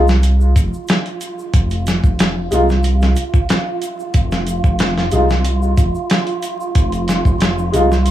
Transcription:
Already playing: detuned saw bass C2, synth texture F4
0.08 snare, shaker
0.23 closed hi-hat, shaker
0.41 shaker
0.56 detuned saw bass F1, kick, closed hi-hat, shaker
0.73 shaker
0.88 snare, closed hi-hat, shaker
1.06 closed hi-hat
1.21 closed hi-hat, shaker
1.39 shaker
1.54 detuned saw bass F1, kick, closed hi-hat, shaker
1.71 closed hi-hat, shaker
1.87 snare, closed hi-hat, shaker
2.04 detuned saw bass F1, kick, shaker
2.19 snare, closed hi-hat, shaker
2.51 detuned saw bass C2, felt piano G#3 D#4 F4, closed hi-hat, shaker
2.69 snare, shaker
2.83 closed hi-hat, shaker
3.02 snare, shaker
3.16 closed hi-hat, shaker
3.34 kick, shaker
3.49 snare, closed hi-hat, shaker
3.82 closed hi-hat, shaker
4.00 shaker
4.14 detuned saw bass F1, kick, closed hi-hat, shaker
4.32 snare, shaker
4.47 closed hi-hat, shaker
4.64 detuned saw bass F1, kick, shaker
4.79 snare, closed hi-hat, shaker
4.98 snare
5.12 detuned saw bass C2, felt piano G#3 D#4 F4, closed hi-hat, shaker
5.30 snare, shaker
5.45 closed hi-hat, shaker
5.62 shaker
5.77 detuned saw bass F1, kick, closed hi-hat, shaker
5.95 shaker
6.10 snare, closed hi-hat, shaker
6.27 closed hi-hat
6.42 closed hi-hat, shaker
6.60 shaker
6.75 detuned saw bass F1, kick, closed hi-hat, shaker
6.92 closed hi-hat, shaker
7.08 snare, closed hi-hat, shaker
7.25 detuned saw bass F1, kick, shaker
7.40 snare, closed hi-hat, shaker
7.58 shaker
7.72 detuned saw bass C2, felt piano G#3 D#4 F4, closed hi-hat, shaker
7.92 snare, shaker
8.06 closed hi-hat, shaker

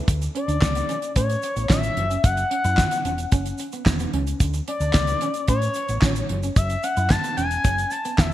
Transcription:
0.08 fingered electric bass D2, kick, closed hi-hat, shaker
0.22 muted clean electric guitar stroke, closed hi-hat, shaker
0.35 clean electric guitar C#4, analog synth lead D5, closed hi-hat
0.48 fingered electric bass D2, clean electric guitar D4, closed hi-hat, shaker
0.61 fingered electric bass C#2, muted clean electric guitar stroke, kick, snare, clap, shaker
0.75 clean electric guitar B3, closed hi-hat, shaker
0.89 clean electric guitar C#4, closed hi-hat, shaker
1.02 closed hi-hat, shaker
1.16 fingered electric bass A2, clean electric guitar C#4, analog synth lead C#5, kick, closed hi-hat, shaker
1.29 closed hi-hat, shaker
1.42 muted clean electric guitar stroke, closed hi-hat, shaker
1.56 fingered electric bass A1, clean electric guitar B3, closed hi-hat, shaker
1.69 fingered electric bass A1, clean electric guitar C#4, analog synth lead E5, kick, snare, clap, shaker
1.83 muted clean electric guitar stroke, closed hi-hat, shaker
1.97 fingered electric bass F#1, closed hi-hat
2.10 clean electric guitar C#4, closed hi-hat, shaker
2.24 fingered electric bass F#1, analog synth lead F#5, kick, closed hi-hat, shaker
2.37 muted clean electric guitar stroke, closed hi-hat, shaker
2.51 clean electric guitar C#4, closed hi-hat
2.64 fingered electric bass F#2, clean electric guitar E4, closed hi-hat, shaker
2.77 muted clean electric guitar stroke, kick, snare, clap, shaker
2.91 clean electric guitar B3, closed hi-hat, shaker
3.05 fingered electric bass E1, clean electric guitar C#4, closed hi-hat, shaker
3.18 closed hi-hat, shaker
3.32 fingered electric bass F#1, clean electric guitar C#4, kick, closed hi-hat, shaker
3.46 closed hi-hat, shaker
3.58 muted clean electric guitar stroke, closed hi-hat, shaker
3.72 clean electric guitar B3, closed hi-hat, shaker
3.86 fingered electric bass E1, muted clean electric guitar stroke, kick, snare, clap, shaker
3.99 clean electric guitar B3, closed hi-hat, shaker
4.13 fingered electric bass C#2, clean electric guitar C#4, closed hi-hat
4.27 closed hi-hat, shaker
4.40 fingered electric bass D2, kick, closed hi-hat, shaker
4.53 muted clean electric guitar stroke, closed hi-hat, shaker
4.68 clean electric guitar C#4, analog synth lead D5, closed hi-hat
4.80 fingered electric bass D2, clean electric guitar D4, closed hi-hat, shaker
4.93 fingered electric bass C#2, muted clean electric guitar stroke, kick, snare, clap, shaker
5.07 clean electric guitar B3, closed hi-hat, shaker
5.21 clean electric guitar C#4, closed hi-hat, shaker
5.34 closed hi-hat, shaker
5.48 fingered electric bass A2, clean electric guitar C#4, analog synth lead C#5, kick, closed hi-hat, shaker
5.62 closed hi-hat, shaker
5.74 muted clean electric guitar stroke, closed hi-hat, shaker
5.89 fingered electric bass A1, clean electric guitar B3, closed hi-hat, shaker
6.01 fingered electric bass A1, clean electric guitar C#4, kick, snare, clap, shaker
6.16 muted clean electric guitar stroke, closed hi-hat, shaker
6.29 fingered electric bass F#1, closed hi-hat
6.43 clean electric guitar C#4, closed hi-hat, shaker
6.56 fingered electric bass F#1, analog synth lead E5, kick, closed hi-hat, shaker
6.70 muted clean electric guitar stroke, closed hi-hat, shaker
6.83 clean electric guitar C#4, analog synth lead F#5, closed hi-hat, shaker
6.97 fingered electric bass F#2, clean electric guitar E4, closed hi-hat, shaker
7.10 analog synth lead A5, muted clean electric guitar stroke, kick, snare, clap, shaker
7.24 clean electric guitar B3, closed hi-hat, shaker
7.37 fingered electric bass E1, clean electric guitar C#4, analog synth lead G#5, closed hi-hat, shaker
7.51 closed hi-hat, shaker
7.64 fingered electric bass F#1, clean electric guitar C#4, kick, closed hi-hat, shaker
7.78 closed hi-hat, shaker
7.91 analog synth lead A5, muted clean electric guitar stroke, closed hi-hat, shaker
8.05 clean electric guitar B3, closed hi-hat, shaker
8.18 fingered electric bass E1, analog synth lead E5, kick, snare, clap, shaker

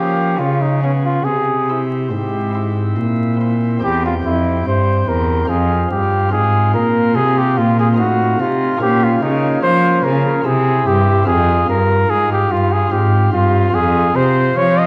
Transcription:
Already playing: pipe organ F3 A#3 C#4, cello F3, trumpet G4
0.39 pipe organ C#3, cello C#3, trumpet F4
0.62 trumpet D#4
0.82 pipe organ B3 C#4, trumpet C#4
1.05 trumpet F4
1.24 cello C3, pipe organ C3, trumpet G#4
1.69 pipe organ C4 E4
2.11 cello G#2, pipe organ G#2, trumpet G4
2.55 pipe organ C4 E4
2.96 cello A#2, pipe organ A#2
3.41 pipe organ C4 E4
3.79 pipe organ C4 G4
3.83 cello E2, pipe organ E2, trumpet G4
4.06 trumpet F4
4.25 pipe organ F2, cello F2, trumpet E4
4.67 pipe organ G2, cello G2, trumpet C5
5.08 pipe organ E2, cello E2, trumpet A#4
5.45 pipe organ C4 F4
5.49 cello F2, pipe organ F2, trumpet G#4
5.91 pipe organ G2, cello G2, trumpet G4
6.28 pipe organ C4 F4, trumpet G#4
6.33 pipe organ G#2, cello G#2
6.74 pipe organ A#2, cello A#2, trumpet A#4
7.16 pipe organ C3, cello C3, trumpet G#4
7.38 trumpet G4
7.58 pipe organ A#2, cello A#2, trumpet F4
7.79 trumpet G#4
7.94 pipe organ C4 D#4 F4
7.98 pipe organ A2, cello A2, trumpet F#4
8.40 pipe organ C3, cello C3, trumpet F4
8.77 pipe organ A#3 C#4 F4
8.81 pipe organ A#2, cello A#2, trumpet G4
9.04 trumpet F4
9.22 cello C#3, pipe organ C#3, trumpet D#4
9.62 pipe organ F3, cello F3, trumpet C5
10.04 pipe organ C#3, cello C#3, trumpet A#4
10.43 cello C3, pipe organ C3 C4 E4, trumpet G#4
10.87 cello G2, pipe organ G2, trumpet G4
11.24 pipe organ C4 F4, trumpet G#4
11.28 pipe organ F2, cello F2
11.69 pipe organ G2, cello G2, trumpet A#4
12.10 pipe organ G#2, cello G#2, trumpet G#4
12.32 trumpet G4
12.51 pipe organ G2, cello G2, trumpet F4
12.72 trumpet G#4
12.90 cello G#2, pipe organ G#2 C4 F4, trumpet G4
13.33 pipe organ G2, cello G2, trumpet F4
13.70 pipe organ C4 F4
13.74 cello F2, pipe organ F2, trumpet G#4
14.16 pipe organ C3, cello C3, trumpet C5
14.57 pipe organ F3, cello F3, trumpet C#5
14.79 trumpet D#5

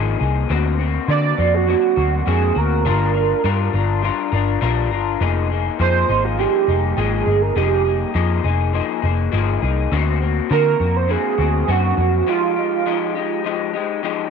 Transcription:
Already playing: picked electric bass G#1, clean electric guitar F3 A#3 D#4 G#4
0.19 picked electric bass C2, clean electric guitar A#3 D#4 G#4
0.49 picked electric bass D2, clean electric guitar D3 A#3 C4 F#4
0.79 clean electric guitar A#3 C4 F#4
1.08 clean electric guitar D3 A#3 C4 F#4, picked electric bass D3, soft synth lead D5
1.38 picked electric bass F2, clean electric guitar A#3 C4 F#4
1.54 soft synth lead F#4
1.67 clean electric guitar D3 A#3 C4 F#4
1.96 picked electric bass D2, clean electric guitar A#3 C4 F#4
2.26 picked electric bass F2, clean electric guitar D3 A#3 C4 F#4, soft synth lead G#4
2.55 picked electric bass D2, clean electric guitar A#3 C4 F#4, soft synth lead A#4
2.85 picked electric bass G1, clean electric guitar G3 D4 F4 A#4
3.14 clean electric guitar D4 F4 A#4
3.44 picked electric bass G2, clean electric guitar G3 D4 F4 A#4
3.73 picked electric bass G1, clean electric guitar D4 F4 A#4
4.02 clean electric guitar G3 D4 F4 A#4
4.32 picked electric bass G1, clean electric guitar D4 F4 A#4
4.61 picked electric bass A#1, clean electric guitar G3 D4 F4 A#4
4.91 picked electric bass G1, clean electric guitar D4 F4 A#4
5.20 picked electric bass F1, clean electric guitar F3 A#3 D#4 G#4
5.50 clean electric guitar A#3 D#4 G#4
5.79 picked electric bass F2, clean electric guitar F3 A#3 D#4 G#4, soft synth lead C5
6.09 picked electric bass G#1, clean electric guitar A#3 D#4 G#4
6.24 soft synth lead F4
6.37 clean electric guitar F3 A#3 D#4 G#4, soft synth lead G4
6.67 picked electric bass F1, clean electric guitar A#3 D#4 G#4
6.97 picked electric bass G#1, clean electric guitar F3 A#3 D#4 G#4, soft synth lead G#4
7.26 picked electric bass G1, clean electric guitar A#3 D#4 G#4
7.42 soft synth lead A#4
7.56 picked electric bass F1, clean electric guitar F3 A#3 D#4 G#4, soft synth lead G4
7.85 clean electric guitar A#3 D#4 G#4
8.14 picked electric bass F2, clean electric guitar F3 A#3 D#4 G#4
8.44 picked electric bass F1, clean electric guitar A#3 D#4 G#4
8.73 clean electric guitar F3 A#3 D#4 G#4
9.02 picked electric bass F1, clean electric guitar A#3 D#4 G#4
9.32 picked electric bass G1, clean electric guitar F3 A#3 D#4 G#4
9.62 picked electric bass C2, clean electric guitar A#3 D#4 G#4
9.91 picked electric bass D2, clean electric guitar D3 A#3 C4 F#4
10.20 clean electric guitar A#3 C4 F#4
10.50 clean electric guitar D3 A#3 C4 F#4, picked electric bass D3, soft synth lead A#4
10.80 picked electric bass F2, clean electric guitar A#3 C4 F#4
10.96 soft synth lead C5
11.08 clean electric guitar D3 A#3 C4 F#4, soft synth lead G#4
11.38 picked electric bass D2, clean electric guitar A#3 C4 F#4
11.68 picked electric bass F#2, clean electric guitar D3 A#3 C4 F#4, soft synth lead F#4
11.97 picked electric bass F2, clean electric guitar A#3 C4 F#4
12.26 clean electric guitar F3 G#3 D#4 G4, soft synth lead F4
12.56 clean electric guitar G#3 D#4 G4
12.86 clean electric guitar F3 G#3 D#4 G4
13.15 clean electric guitar G#3 D#4 G4
13.44 clean electric guitar F3 G#3 D#4 G4
13.73 clean electric guitar G#3 D#4 G4
14.03 clean electric guitar F3 G#3 D#4 G4

